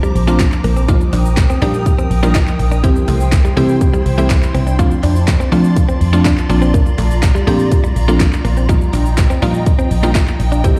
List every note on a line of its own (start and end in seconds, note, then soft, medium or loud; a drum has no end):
0.00 0.12 F3 loud
0.00 2.80 F3 medium
0.00 0.13 G3 medium
0.00 0.12 A#3 medium
0.00 0.12 C4 medium
0.00 0.13 D4 medium
0.00 0.13 F4 loud
0.00 0.85 C5 medium
0.00 0.87 A#5 medium
0.00 0.85 D6 medium
0.00 shaker medium
0.15 0.49 A#1 medium
0.15 muted clean electric guitar stroke soft
0.15 open hi-hat medium
0.15 shaker medium
0.27 0.73 F3 medium
0.27 0.38 A3 medium
0.27 0.73 A#3 medium
0.27 0.73 C4 medium
0.27 0.73 D4 medium
0.27 0.73 F4 loud
0.27 shaker medium
0.39 muted clean electric guitar stroke soft
0.39 kick loud
0.39 snare medium
0.39 clap loud
0.39 clap medium
0.39 closed hi-hat medium
0.39 shaker medium
0.52 clap medium
0.52 shaker medium
0.64 0.97 A#1 loud
0.64 0.74 A#3 medium
0.64 open hi-hat medium
0.64 shaker medium
0.76 0.87 C4 medium
0.76 shaker medium
0.88 1.43 F3 medium
0.88 1.44 G3 medium
0.88 1.44 A#3 medium
0.88 0.99 D#4 medium
0.88 1.44 D#4 medium
0.88 1.44 F4 loud
0.88 2.82 A#4 medium
0.88 4.75 G5 medium
0.88 2.82 D#6 medium
0.88 kick loud
0.88 closed hi-hat medium
0.88 shaker medium
1.01 muted clean electric guitar stroke soft
1.01 shaker medium
1.13 1.46 A#1 medium
1.13 1.23 D4 medium
1.13 clap medium
1.13 open hi-hat medium
1.13 shaker medium
1.25 shaker medium
1.37 muted clean electric guitar stroke soft
1.37 kick loud
1.37 snare loud
1.37 clap loud
1.37 clap medium
1.37 closed hi-hat medium
1.37 shaker medium
1.50 1.60 C4 medium
1.50 shaker medium
1.62 1.95 A#2 medium
1.62 2.07 F3 loud
1.62 2.08 G3 medium
1.62 2.08 A#3 medium
1.62 1.72 D4 medium
1.62 2.08 D#4 medium
1.62 2.08 G4 loud
1.62 open hi-hat medium
1.62 shaker medium
1.74 shaker medium
1.86 kick loud
1.86 closed hi-hat medium
1.86 shaker medium
1.99 2.09 C4 medium
1.99 shaker medium
2.11 2.44 A#1 medium
2.11 muted clean electric guitar stroke soft
2.11 open hi-hat medium
2.11 shaker medium
2.23 2.69 F3 medium
2.23 2.69 G3 medium
2.23 2.69 A#3 medium
2.23 2.33 D4 medium
2.23 2.69 D#4 medium
2.23 2.69 F4 loud
2.23 shaker medium
2.35 2.45 D#4 medium
2.35 kick loud
2.35 snare medium
2.35 clap loud
2.35 clap medium
2.35 closed hi-hat medium
2.35 shaker medium
2.47 clap medium
2.47 shaker medium
2.59 2.93 A#1 loud
2.59 muted clean electric guitar stroke soft
2.59 open hi-hat medium
2.59 shaker medium
2.71 2.82 D4 medium
2.71 shaker medium
2.83 3.39 E3 medium
2.83 3.39 G3 medium
2.83 3.39 C4 medium
2.83 2.94 C4 medium
2.83 4.77 E4 medium
2.83 3.39 E4 medium
2.83 3.39 G4 loud
2.83 4.77 C5 medium
2.83 8.65 C6 medium
2.83 kick loud
2.83 closed hi-hat medium
2.83 shaker medium
2.96 muted clean electric guitar stroke soft
2.96 shaker medium
3.08 3.41 C2 medium
3.08 3.18 A3 medium
3.08 clap medium
3.08 open hi-hat medium
3.08 shaker medium
3.20 shaker medium
3.32 muted clean electric guitar stroke soft
3.32 kick loud
3.32 snare loud
3.32 clap loud
3.32 clap medium
3.32 closed hi-hat medium
3.32 shaker medium
3.45 3.55 G3 medium
3.45 shaker medium
3.57 3.90 C3 medium
3.57 4.02 E3 loud
3.57 4.03 G3 medium
3.57 3.67 A3 medium
3.57 4.03 C4 medium
3.57 4.03 E4 medium
3.57 4.03 G4 loud
3.57 open hi-hat medium
3.57 shaker medium
3.69 shaker medium
3.81 kick loud
3.81 closed hi-hat medium
3.81 shaker medium
3.94 4.04 G3 medium
3.94 shaker medium
4.06 4.39 C2 medium
4.06 muted clean electric guitar stroke soft
4.06 open hi-hat medium
4.06 shaker medium
4.18 4.63 E3 medium
4.18 4.64 G3 medium
4.18 4.28 A3 medium
4.18 4.64 C4 medium
4.18 4.64 E4 medium
4.18 4.64 G4 loud
4.18 shaker medium
4.30 muted clean electric guitar stroke soft
4.30 kick loud
4.30 snare medium
4.30 clap loud
4.30 clap medium
4.30 closed hi-hat medium
4.30 shaker medium
4.43 clap medium
4.43 shaker medium
4.54 4.88 C2 loud
4.54 4.65 C4 medium
4.54 open hi-hat medium
4.54 shaker medium
4.67 4.77 D4 medium
4.67 shaker medium
4.79 5.34 F3 medium
4.79 5.34 A3 medium
4.79 5.34 C4 medium
4.79 5.34 D4 medium
4.79 4.89 F4 medium
4.79 10.60 F4 medium
4.79 5.34 F4 loud
4.79 8.65 D5 medium
4.79 6.48 A5 medium
4.79 kick loud
4.79 closed hi-hat medium
4.79 shaker medium
4.91 muted clean electric guitar stroke soft
4.91 shaker medium
5.03 5.36 F2 medium
5.03 5.13 D4 medium
5.03 clap medium
5.03 open hi-hat medium
5.03 shaker medium
5.16 shaker medium
5.28 muted clean electric guitar stroke soft
5.28 kick loud
5.28 snare loud
5.28 clap medium
5.28 clap loud
5.28 closed hi-hat medium
5.28 shaker medium
5.40 5.50 C4 medium
5.40 shaker medium
5.52 5.98 F3 loud
5.52 5.85 F3 medium
5.52 5.98 A3 medium
5.52 5.98 C4 medium
5.52 5.62 D4 medium
5.52 5.98 D4 medium
5.52 5.98 F4 loud
5.52 open hi-hat medium
5.52 shaker medium
5.64 shaker medium
5.76 kick loud
5.76 closed hi-hat medium
5.76 shaker medium
5.89 5.99 C4 medium
5.89 shaker medium
6.01 6.34 F2 medium
6.01 muted clean electric guitar stroke soft
6.01 open hi-hat medium
6.01 shaker medium
6.13 6.48 F3 medium
6.13 6.49 A3 medium
6.13 6.48 C4 medium
6.13 6.48 D4 medium
6.13 6.23 D4 medium
6.13 6.49 F4 loud
6.13 shaker medium
6.25 6.35 D4 medium
6.25 kick loud
6.25 snare medium
6.25 clap loud
6.25 clap medium
6.25 closed hi-hat medium
6.25 shaker medium
6.38 clap medium
6.38 shaker medium
6.49 6.83 A#1 loud
6.49 7.28 F3 medium
6.49 7.28 A#3 medium
6.49 7.28 C4 medium
6.49 7.28 D4 medium
6.49 7.28 F4 loud
6.49 10.60 A#5 medium
6.49 muted clean electric guitar stroke soft
6.49 open hi-hat medium
6.49 shaker medium
6.62 6.72 C4 medium
6.62 shaker medium
6.74 6.84 A#3 medium
6.74 kick loud
6.74 closed hi-hat medium
6.74 shaker medium
6.86 muted clean electric guitar stroke soft
6.86 shaker medium
6.98 7.32 A#1 loud
6.98 7.09 A3 medium
6.98 clap medium
6.98 open hi-hat medium
6.98 shaker medium
7.11 shaker medium
7.23 muted clean electric guitar stroke soft
7.23 kick loud
7.23 snare loud
7.23 clap loud
7.23 clap medium
7.23 closed hi-hat medium
7.23 shaker medium
7.35 7.45 G3 medium
7.35 shaker medium
7.47 7.80 A#2 medium
7.47 7.93 F3 loud
7.47 7.57 A3 medium
7.47 7.93 A#3 medium
7.47 7.93 C4 medium
7.47 7.93 D4 medium
7.47 7.93 G4 loud
7.47 open hi-hat medium
7.47 shaker medium
7.59 shaker medium
7.72 kick loud
7.72 closed hi-hat medium
7.72 shaker medium
7.84 7.94 G3 medium
7.84 shaker medium
7.96 8.29 A#1 medium
7.96 muted clean electric guitar stroke soft
7.96 open hi-hat medium
7.96 shaker medium
8.08 8.54 F3 medium
8.08 8.18 A3 medium
8.08 8.54 A#3 medium
8.08 8.54 C4 medium
8.08 8.54 D4 medium
8.08 8.54 F4 loud
8.08 shaker medium
8.20 muted clean electric guitar stroke soft
8.20 kick loud
8.20 snare medium
8.20 clap loud
8.20 clap medium
8.20 closed hi-hat medium
8.20 shaker medium
8.33 clap medium
8.33 shaker medium
8.45 8.78 A#1 loud
8.45 8.55 A#3 medium
8.45 open hi-hat medium
8.45 shaker medium
8.57 8.67 C4 medium
8.57 shaker medium
8.69 9.24 F3 medium
8.69 9.24 G3 medium
8.69 9.24 A#3 medium
8.69 9.24 D#4 medium
8.69 8.79 D#4 medium
8.69 9.24 F4 loud
8.69 10.62 D#5 medium
8.69 10.79 G5 medium
8.69 kick loud
8.69 closed hi-hat medium
8.69 shaker medium
8.81 muted clean electric guitar stroke soft
8.81 shaker medium
8.93 9.27 A#1 medium
8.93 9.04 D4 medium
8.93 clap medium
8.93 open hi-hat medium
8.93 shaker medium
9.06 shaker medium
9.18 muted clean electric guitar stroke soft
9.18 kick loud
9.18 snare loud
9.18 clap loud
9.18 clap medium
9.18 closed hi-hat medium
9.18 shaker medium
9.30 9.40 C4 medium
9.30 shaker medium
9.42 9.75 A#2 medium
9.42 9.88 F3 loud
9.42 9.88 G3 medium
9.42 9.88 A#3 medium
9.42 9.52 D4 medium
9.42 9.88 D#4 medium
9.42 9.88 F4 loud
9.42 open hi-hat medium
9.42 shaker medium
9.54 shaker medium
9.66 kick loud
9.66 closed hi-hat medium
9.66 shaker medium
9.79 9.89 C4 medium
9.79 shaker medium
9.91 10.24 A#1 medium
9.91 muted clean electric guitar stroke soft
9.91 open hi-hat medium
9.91 shaker medium
10.03 10.49 F3 medium
10.03 10.49 G3 medium
10.03 10.49 A#3 medium
10.03 10.13 D4 medium
10.03 10.49 D#4 medium
10.03 10.49 F4 loud
10.03 shaker medium
10.15 10.25 D#4 medium
10.15 kick loud
10.15 snare medium
10.15 clap loud
10.15 clap medium
10.15 closed hi-hat medium
10.15 shaker medium
10.27 clap medium
10.27 shaker medium
10.40 10.73 A#1 loud
10.40 muted clean electric guitar stroke soft
10.40 open hi-hat medium
10.40 shaker medium
10.52 10.62 D4 medium
10.52 shaker medium
10.64 10.79 E3 medium
10.64 10.79 G3 medium
10.64 10.74 C4 medium
10.64 10.79 C4 medium
10.64 10.79 E4 medium
10.64 10.79 G4 medium
10.64 10.79 C5 medium
10.64 10.79 C6 medium
10.64 kick loud
10.64 closed hi-hat medium
10.64 shaker medium
10.76 muted clean electric guitar stroke soft